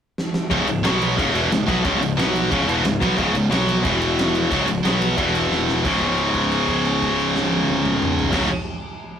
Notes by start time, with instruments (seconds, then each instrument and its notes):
0.18 snare
0.34 snare
0.50 picked electric bass C#1, distorted electric guitar C#2 G#2 C#3, kick, ride
0.65 picked electric bass C#1, distorted electric guitar C#2 G#2, ride
0.83 picked electric bass B1, distorted electric guitar B2 F#3 B3, snare, ride
1.02 ride
1.16 picked electric bass C#1, distorted electric guitar C#2 G#2 C#3, kick, ride
1.32 picked electric bass E1, distorted electric guitar E2 B2 E3, ride
1.50 picked electric bass C#1, distorted electric guitar C#2 G#2, snare, ride
1.67 picked electric bass B1, distorted electric guitar B2 F#3 B3, kick, ride
1.83 picked electric bass C#1, distorted electric guitar C#2 G#2 C#3, kick, ride
1.99 picked electric bass C#1, distorted electric guitar C#2 G#2, ride
2.16 picked electric bass B1, distorted electric guitar B2 F#3 B3, snare, ride
2.36 ride
2.50 picked electric bass C#1, distorted electric guitar C#2 G#2 C#3, kick, ride
2.64 picked electric bass E1, distorted electric guitar E2 B2 E3
2.69 ride
2.83 picked electric bass C#1, distorted electric guitar C#2 G#2, snare, ride
3.00 picked electric bass B1, distorted electric guitar B2 F#3 B3, kick, ride
3.17 picked electric bass C#1, distorted electric guitar C#2 G#2 C#3, kick, ride
3.33 picked electric bass C#1, distorted electric guitar C#2 G#2, ride
3.49 picked electric bass B1, distorted electric guitar B2 F#3 B3, snare, ride
3.69 ride
3.83 picked electric bass E1, distorted electric guitar E2 B2 E3, kick, ride
4.01 ride
4.19 snare, ride
4.35 ride
4.51 picked electric bass C#1, distorted electric guitar C#2 G#2 C#3, kick, ride
4.66 picked electric bass C#1, distorted electric guitar C#2 G#2, ride
4.82 picked electric bass B1, distorted electric guitar B2 F#3 B3, snare, ride
5.02 ride
5.16 picked electric bass E1, distorted electric guitar E2 B2 E3, kick, ride
5.35 ride
5.52 snare
5.68 snare
5.83 picked electric bass C#1, distorted electric guitar C#2 G#2, kick, crash
5.87 distorted electric guitar C#3
6.01 kick, crash
6.18 crash
6.34 kick, crash
6.52 crash
6.68 kick, crash
6.85 crash
7.02 kick, crash
7.20 crash
7.36 snare
7.53 high tom
7.69 high tom
7.85 mid tom
8.02 mid tom
8.19 floor tom
8.31 picked electric bass C#1, distorted electric guitar C#2 G#2, kick, snare, crash
8.35 distorted electric guitar C#3